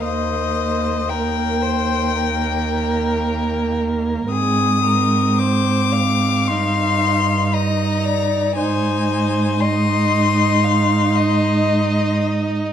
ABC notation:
X:1
M:4/4
L:1/8
Q:1/4=56
K:Eb
V:1 name="Violin"
e2 g4- g z | e'2 d'2 c'2 b2 | a2 c'4- c' z |]
V:2 name="Violin"
c2 B c B4 | A B c f3 e d | c2 e2 f e3 |]
V:3 name="Viola"
B,2 B,6 | C4 E2 E2 | E2 E6 |]
V:4 name="Cello" clef=bass
E,,8 | A,,4 G,,4 | A,,8 |]